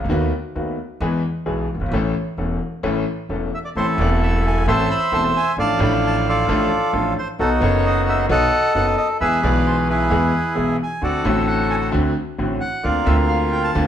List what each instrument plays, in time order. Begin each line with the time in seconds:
0.00 upright bass C#2, grand piano D2
0.05 upright bass D2, grand piano D#3 A3
0.09 grand piano D#2 B3 F#4, upright bass D#2
0.55 grand piano D#2 D#3 A3 B3 F#4, upright bass D#2
1.00 upright bass E2, grand piano E2 E3 G#3 B3 G#4
1.46 grand piano B1 B2 E3 G#3 B3 G#4, upright bass B1
1.74 grand piano F#1, upright bass F#1
1.80 upright bass G1, grand piano G1
1.86 upright bass G#1, grand piano G#1
1.92 upright bass A1, grand piano A1 A2 E3 A3 C#4 A4
2.37 upright bass E1, grand piano E1 E2 E3 A3 C#4 A4
2.83 upright bass A1, grand piano A1 A2 E3 A3 C#4 A4
3.29 upright bass E1, grand piano E1 E2 E3 A3 C#4 A4
3.54 bandoneon E5
3.65 bandoneon D5
3.75 upright bass A1, grand piano A1 A2 E3 A3 C4 A4, bandoneon E4 A4 C5
3.97 upright bass E1, grand piano E1 E2 E3 A3 C4, bandoneon D5
4.01 grand piano A4
4.23 bandoneon E5
4.47 bandoneon G#5
4.66 upright bass A1, grand piano A1 A2 E3 A3 C4 A4, bandoneon C5 E5 A5
4.91 bandoneon B5
5.12 upright bass E1, grand piano E1 E2 E3 A3 C4 A4, bandoneon A5
5.37 bandoneon G#5
5.57 upright bass A1, grand piano A1 A2 F3 A3 D4 A4, bandoneon D5 F5 A5
5.78 upright bass A1, grand piano A1 A2 F3 A3 D4
5.82 grand piano A4, bandoneon B5
6.07 bandoneon A5
6.28 bandoneon F4 A4 D5
6.48 upright bass A1, grand piano A1 A2 F3 A3 D4 A4
6.93 upright bass A1, grand piano A1 A2 F3 A3 D4 A4
7.18 bandoneon C5
7.39 upright bass B1, grand piano B1 B2 F#3 B3 D#4 A4, bandoneon D#4 F#4 A4
7.60 upright bass F#1, grand piano F#1 F#2 F#3 B3 D#4, bandoneon C#5
7.64 grand piano A4
7.86 bandoneon D#5
8.09 bandoneon E5
8.29 grand piano B1 B2 F#3 B3 D#4 A4, upright bass B1, bandoneon A4 D#5 F#5
8.75 upright bass F#1, grand piano F#1 F#2 F#3 B3 D#4 A4, bandoneon F#5
8.97 bandoneon D#5
9.20 upright bass E2, grand piano E2 E3 G#3 B3 G#4, bandoneon G#4 B4 E5
9.42 upright bass B1, grand piano B1 B2 E3 G#3 B3, bandoneon D5
9.46 grand piano G#4
9.67 bandoneon C5
9.89 bandoneon E4 G#4 B4
10.10 grand piano E2 E3 G#3 B3 G#4, upright bass E2
10.55 grand piano B1 B2 E3 G#3 B3 G#4, upright bass B1
10.83 bandoneon G#5
11.01 grand piano D2 D3 A3 C4 F#4, upright bass D2, bandoneon F#4 A4 D5
11.23 upright bass A1, grand piano A1 A2 D3 A3 C4 F#4, bandoneon E5
11.48 bandoneon F#5
11.70 bandoneon G#5
11.81 bandoneon A5
11.92 grand piano D2 D3 A3 C4 F#4, upright bass D2
12.38 grand piano A1 A2 D3 A3 C4 F#4, upright bass A1
12.61 bandoneon F#5
12.83 grand piano D2 D3 A#3 C4 F4, upright bass D2, bandoneon F4 A#4 D5
13.04 grand piano D2 D3 A#3 C4, upright bass D2, bandoneon E5
13.08 grand piano F4
13.28 bandoneon F5
13.53 bandoneon G5
13.64 bandoneon A5
13.75 grand piano D2 D3 A#3 C4 F4, upright bass D2